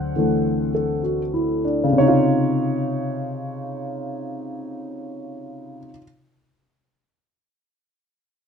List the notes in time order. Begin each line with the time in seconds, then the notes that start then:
Already playing: D2 D3 F#3 C4 A4 C5 F#5
0.16 D3 E3 A3
0.74 A4
1.03 F#4
1.34 E4
1.65 D4
1.84 C#3
1.92 C3
1.98 D#4 C#5
2.08 F4